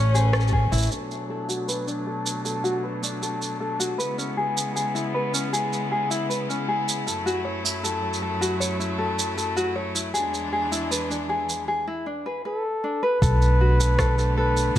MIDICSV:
0, 0, Header, 1, 6, 480
1, 0, Start_track
1, 0, Tempo, 769231
1, 568, Time_signature, 4, 2, 24, 8
1, 9226, End_track
2, 0, Start_track
2, 0, Title_t, "Flugelhorn"
2, 0, Program_c, 0, 56
2, 0, Note_on_c, 0, 73, 106
2, 304, Note_off_c, 0, 73, 0
2, 7779, Note_on_c, 0, 69, 72
2, 8137, Note_on_c, 0, 71, 87
2, 8147, Note_off_c, 0, 69, 0
2, 8973, Note_off_c, 0, 71, 0
2, 8978, Note_on_c, 0, 71, 81
2, 9197, Note_off_c, 0, 71, 0
2, 9226, End_track
3, 0, Start_track
3, 0, Title_t, "Ukulele"
3, 0, Program_c, 1, 24
3, 0, Note_on_c, 1, 61, 79
3, 77, Note_off_c, 1, 61, 0
3, 90, Note_on_c, 1, 68, 80
3, 317, Note_off_c, 1, 68, 0
3, 330, Note_on_c, 1, 68, 79
3, 437, Note_off_c, 1, 68, 0
3, 449, Note_on_c, 1, 64, 105
3, 557, Note_off_c, 1, 64, 0
3, 808, Note_on_c, 1, 69, 60
3, 916, Note_off_c, 1, 69, 0
3, 929, Note_on_c, 1, 66, 75
3, 1037, Note_off_c, 1, 66, 0
3, 1049, Note_on_c, 1, 71, 65
3, 1157, Note_off_c, 1, 71, 0
3, 1169, Note_on_c, 1, 62, 63
3, 1277, Note_off_c, 1, 62, 0
3, 1289, Note_on_c, 1, 69, 65
3, 1517, Note_off_c, 1, 69, 0
3, 1528, Note_on_c, 1, 69, 61
3, 1636, Note_off_c, 1, 69, 0
3, 1646, Note_on_c, 1, 66, 89
3, 1755, Note_off_c, 1, 66, 0
3, 1769, Note_on_c, 1, 71, 56
3, 1877, Note_off_c, 1, 71, 0
3, 1888, Note_on_c, 1, 62, 58
3, 1997, Note_off_c, 1, 62, 0
3, 2010, Note_on_c, 1, 69, 59
3, 2237, Note_off_c, 1, 69, 0
3, 2249, Note_on_c, 1, 69, 59
3, 2357, Note_off_c, 1, 69, 0
3, 2369, Note_on_c, 1, 66, 87
3, 2477, Note_off_c, 1, 66, 0
3, 2486, Note_on_c, 1, 71, 64
3, 2595, Note_off_c, 1, 71, 0
3, 2609, Note_on_c, 1, 61, 67
3, 2717, Note_off_c, 1, 61, 0
3, 2728, Note_on_c, 1, 68, 60
3, 2956, Note_off_c, 1, 68, 0
3, 2968, Note_on_c, 1, 68, 65
3, 3076, Note_off_c, 1, 68, 0
3, 3088, Note_on_c, 1, 64, 82
3, 3196, Note_off_c, 1, 64, 0
3, 3211, Note_on_c, 1, 71, 65
3, 3318, Note_off_c, 1, 71, 0
3, 3329, Note_on_c, 1, 61, 64
3, 3437, Note_off_c, 1, 61, 0
3, 3449, Note_on_c, 1, 68, 66
3, 3677, Note_off_c, 1, 68, 0
3, 3691, Note_on_c, 1, 68, 64
3, 3798, Note_off_c, 1, 68, 0
3, 3810, Note_on_c, 1, 64, 82
3, 3917, Note_off_c, 1, 64, 0
3, 3928, Note_on_c, 1, 71, 64
3, 4036, Note_off_c, 1, 71, 0
3, 4050, Note_on_c, 1, 61, 63
3, 4158, Note_off_c, 1, 61, 0
3, 4170, Note_on_c, 1, 68, 67
3, 4397, Note_off_c, 1, 68, 0
3, 4409, Note_on_c, 1, 69, 68
3, 4517, Note_off_c, 1, 69, 0
3, 4529, Note_on_c, 1, 66, 89
3, 4637, Note_off_c, 1, 66, 0
3, 4647, Note_on_c, 1, 73, 61
3, 4756, Note_off_c, 1, 73, 0
3, 4770, Note_on_c, 1, 64, 60
3, 4877, Note_off_c, 1, 64, 0
3, 4889, Note_on_c, 1, 69, 72
3, 5117, Note_off_c, 1, 69, 0
3, 5129, Note_on_c, 1, 69, 69
3, 5237, Note_off_c, 1, 69, 0
3, 5248, Note_on_c, 1, 66, 84
3, 5356, Note_off_c, 1, 66, 0
3, 5368, Note_on_c, 1, 73, 70
3, 5476, Note_off_c, 1, 73, 0
3, 5489, Note_on_c, 1, 64, 67
3, 5597, Note_off_c, 1, 64, 0
3, 5606, Note_on_c, 1, 69, 68
3, 5836, Note_off_c, 1, 69, 0
3, 5848, Note_on_c, 1, 69, 68
3, 5956, Note_off_c, 1, 69, 0
3, 5968, Note_on_c, 1, 66, 81
3, 6076, Note_off_c, 1, 66, 0
3, 6088, Note_on_c, 1, 73, 68
3, 6196, Note_off_c, 1, 73, 0
3, 6208, Note_on_c, 1, 64, 67
3, 6316, Note_off_c, 1, 64, 0
3, 6326, Note_on_c, 1, 68, 68
3, 6555, Note_off_c, 1, 68, 0
3, 6568, Note_on_c, 1, 68, 64
3, 6676, Note_off_c, 1, 68, 0
3, 6688, Note_on_c, 1, 64, 87
3, 6796, Note_off_c, 1, 64, 0
3, 6808, Note_on_c, 1, 71, 67
3, 6916, Note_off_c, 1, 71, 0
3, 6928, Note_on_c, 1, 62, 64
3, 7036, Note_off_c, 1, 62, 0
3, 7046, Note_on_c, 1, 68, 68
3, 7276, Note_off_c, 1, 68, 0
3, 7288, Note_on_c, 1, 68, 68
3, 7396, Note_off_c, 1, 68, 0
3, 7410, Note_on_c, 1, 64, 97
3, 7517, Note_off_c, 1, 64, 0
3, 7527, Note_on_c, 1, 62, 66
3, 7642, Note_off_c, 1, 62, 0
3, 7650, Note_on_c, 1, 71, 66
3, 7757, Note_off_c, 1, 71, 0
3, 7770, Note_on_c, 1, 71, 72
3, 7877, Note_off_c, 1, 71, 0
3, 8011, Note_on_c, 1, 62, 67
3, 8118, Note_off_c, 1, 62, 0
3, 8129, Note_on_c, 1, 71, 69
3, 8237, Note_off_c, 1, 71, 0
3, 8249, Note_on_c, 1, 69, 71
3, 8477, Note_off_c, 1, 69, 0
3, 8491, Note_on_c, 1, 66, 75
3, 8598, Note_off_c, 1, 66, 0
3, 8609, Note_on_c, 1, 69, 69
3, 8717, Note_off_c, 1, 69, 0
3, 8731, Note_on_c, 1, 69, 81
3, 8838, Note_off_c, 1, 69, 0
3, 8851, Note_on_c, 1, 69, 75
3, 8958, Note_off_c, 1, 69, 0
3, 8969, Note_on_c, 1, 69, 82
3, 9197, Note_off_c, 1, 69, 0
3, 9226, End_track
4, 0, Start_track
4, 0, Title_t, "String quartet"
4, 0, Program_c, 2, 48
4, 0, Note_on_c, 2, 57, 69
4, 0, Note_on_c, 2, 61, 81
4, 558, Note_off_c, 2, 57, 0
4, 558, Note_off_c, 2, 61, 0
4, 567, Note_on_c, 2, 47, 57
4, 567, Note_on_c, 2, 57, 54
4, 568, Note_on_c, 2, 54, 54
4, 568, Note_on_c, 2, 62, 60
4, 2469, Note_off_c, 2, 47, 0
4, 2469, Note_off_c, 2, 54, 0
4, 2469, Note_off_c, 2, 57, 0
4, 2469, Note_off_c, 2, 62, 0
4, 2485, Note_on_c, 2, 49, 60
4, 2486, Note_on_c, 2, 59, 60
4, 2486, Note_on_c, 2, 64, 67
4, 2487, Note_on_c, 2, 56, 58
4, 4388, Note_off_c, 2, 49, 0
4, 4388, Note_off_c, 2, 56, 0
4, 4388, Note_off_c, 2, 59, 0
4, 4409, Note_on_c, 2, 42, 67
4, 4410, Note_on_c, 2, 54, 58
4, 4410, Note_on_c, 2, 57, 57
4, 6303, Note_off_c, 2, 64, 0
4, 6310, Note_off_c, 2, 42, 0
4, 6310, Note_off_c, 2, 54, 0
4, 6310, Note_off_c, 2, 57, 0
4, 6327, Note_on_c, 2, 52, 58
4, 6328, Note_on_c, 2, 40, 65
4, 6328, Note_on_c, 2, 56, 59
4, 6331, Note_on_c, 2, 62, 78
4, 7278, Note_off_c, 2, 52, 0
4, 7279, Note_off_c, 2, 40, 0
4, 7279, Note_off_c, 2, 56, 0
4, 7280, Note_off_c, 2, 62, 0
4, 8247, Note_on_c, 2, 50, 77
4, 8248, Note_on_c, 2, 57, 68
4, 8248, Note_on_c, 2, 59, 77
4, 9226, Note_off_c, 2, 50, 0
4, 9226, Note_off_c, 2, 57, 0
4, 9226, Note_off_c, 2, 59, 0
4, 9226, End_track
5, 0, Start_track
5, 0, Title_t, "Upright bass"
5, 0, Program_c, 3, 32
5, 0, Note_on_c, 3, 33, 107
5, 405, Note_off_c, 3, 33, 0
5, 449, Note_on_c, 3, 33, 87
5, 542, Note_off_c, 3, 33, 0
5, 8249, Note_on_c, 3, 35, 86
5, 9166, Note_off_c, 3, 35, 0
5, 9226, End_track
6, 0, Start_track
6, 0, Title_t, "Drums"
6, 94, Note_on_c, 9, 82, 57
6, 157, Note_off_c, 9, 82, 0
6, 208, Note_on_c, 9, 37, 80
6, 213, Note_on_c, 9, 82, 14
6, 253, Note_off_c, 9, 82, 0
6, 253, Note_on_c, 9, 82, 20
6, 270, Note_off_c, 9, 37, 0
6, 296, Note_off_c, 9, 82, 0
6, 296, Note_on_c, 9, 82, 25
6, 328, Note_on_c, 9, 36, 57
6, 359, Note_off_c, 9, 82, 0
6, 390, Note_off_c, 9, 36, 0
6, 453, Note_on_c, 9, 82, 64
6, 484, Note_off_c, 9, 82, 0
6, 484, Note_on_c, 9, 82, 51
6, 513, Note_off_c, 9, 82, 0
6, 513, Note_on_c, 9, 82, 44
6, 541, Note_off_c, 9, 82, 0
6, 541, Note_on_c, 9, 82, 34
6, 571, Note_off_c, 9, 82, 0
6, 571, Note_on_c, 9, 82, 42
6, 634, Note_off_c, 9, 82, 0
6, 693, Note_on_c, 9, 82, 25
6, 756, Note_off_c, 9, 82, 0
6, 933, Note_on_c, 9, 82, 54
6, 995, Note_off_c, 9, 82, 0
6, 1054, Note_on_c, 9, 82, 49
6, 1116, Note_off_c, 9, 82, 0
6, 1172, Note_on_c, 9, 82, 25
6, 1234, Note_off_c, 9, 82, 0
6, 1411, Note_on_c, 9, 82, 55
6, 1473, Note_off_c, 9, 82, 0
6, 1531, Note_on_c, 9, 82, 46
6, 1594, Note_off_c, 9, 82, 0
6, 1651, Note_on_c, 9, 82, 25
6, 1714, Note_off_c, 9, 82, 0
6, 1893, Note_on_c, 9, 82, 54
6, 1955, Note_off_c, 9, 82, 0
6, 2014, Note_on_c, 9, 82, 46
6, 2076, Note_off_c, 9, 82, 0
6, 2134, Note_on_c, 9, 82, 28
6, 2197, Note_off_c, 9, 82, 0
6, 2373, Note_on_c, 9, 82, 58
6, 2436, Note_off_c, 9, 82, 0
6, 2495, Note_on_c, 9, 82, 43
6, 2558, Note_off_c, 9, 82, 0
6, 2614, Note_on_c, 9, 82, 30
6, 2676, Note_off_c, 9, 82, 0
6, 2853, Note_on_c, 9, 82, 57
6, 2916, Note_off_c, 9, 82, 0
6, 2974, Note_on_c, 9, 82, 47
6, 3036, Note_off_c, 9, 82, 0
6, 3093, Note_on_c, 9, 82, 27
6, 3155, Note_off_c, 9, 82, 0
6, 3334, Note_on_c, 9, 82, 57
6, 3397, Note_off_c, 9, 82, 0
6, 3455, Note_on_c, 9, 82, 47
6, 3518, Note_off_c, 9, 82, 0
6, 3575, Note_on_c, 9, 82, 27
6, 3637, Note_off_c, 9, 82, 0
6, 3814, Note_on_c, 9, 82, 54
6, 3876, Note_off_c, 9, 82, 0
6, 3936, Note_on_c, 9, 82, 45
6, 3998, Note_off_c, 9, 82, 0
6, 4057, Note_on_c, 9, 82, 29
6, 4119, Note_off_c, 9, 82, 0
6, 4297, Note_on_c, 9, 82, 60
6, 4360, Note_off_c, 9, 82, 0
6, 4415, Note_on_c, 9, 82, 50
6, 4478, Note_off_c, 9, 82, 0
6, 4537, Note_on_c, 9, 82, 29
6, 4599, Note_off_c, 9, 82, 0
6, 4777, Note_on_c, 9, 82, 63
6, 4839, Note_off_c, 9, 82, 0
6, 4896, Note_on_c, 9, 82, 50
6, 4958, Note_off_c, 9, 82, 0
6, 5076, Note_on_c, 9, 82, 26
6, 5139, Note_off_c, 9, 82, 0
6, 5256, Note_on_c, 9, 82, 57
6, 5318, Note_off_c, 9, 82, 0
6, 5375, Note_on_c, 9, 82, 48
6, 5437, Note_off_c, 9, 82, 0
6, 5495, Note_on_c, 9, 82, 28
6, 5557, Note_off_c, 9, 82, 0
6, 5733, Note_on_c, 9, 82, 57
6, 5796, Note_off_c, 9, 82, 0
6, 5853, Note_on_c, 9, 82, 48
6, 5916, Note_off_c, 9, 82, 0
6, 5972, Note_on_c, 9, 82, 30
6, 6034, Note_off_c, 9, 82, 0
6, 6213, Note_on_c, 9, 82, 60
6, 6275, Note_off_c, 9, 82, 0
6, 6332, Note_on_c, 9, 82, 45
6, 6394, Note_off_c, 9, 82, 0
6, 6453, Note_on_c, 9, 82, 29
6, 6515, Note_off_c, 9, 82, 0
6, 6692, Note_on_c, 9, 82, 61
6, 6754, Note_off_c, 9, 82, 0
6, 6813, Note_on_c, 9, 82, 52
6, 6876, Note_off_c, 9, 82, 0
6, 6933, Note_on_c, 9, 82, 28
6, 6996, Note_off_c, 9, 82, 0
6, 7172, Note_on_c, 9, 82, 58
6, 7234, Note_off_c, 9, 82, 0
6, 8249, Note_on_c, 9, 36, 110
6, 8254, Note_on_c, 9, 82, 53
6, 8312, Note_off_c, 9, 36, 0
6, 8316, Note_off_c, 9, 82, 0
6, 8373, Note_on_c, 9, 82, 34
6, 8435, Note_off_c, 9, 82, 0
6, 8613, Note_on_c, 9, 82, 66
6, 8675, Note_off_c, 9, 82, 0
6, 8728, Note_on_c, 9, 37, 113
6, 8730, Note_on_c, 9, 36, 111
6, 8733, Note_on_c, 9, 82, 60
6, 8790, Note_off_c, 9, 37, 0
6, 8792, Note_off_c, 9, 36, 0
6, 8795, Note_off_c, 9, 82, 0
6, 8852, Note_on_c, 9, 82, 30
6, 8915, Note_off_c, 9, 82, 0
6, 9090, Note_on_c, 9, 82, 68
6, 9153, Note_off_c, 9, 82, 0
6, 9226, End_track
0, 0, End_of_file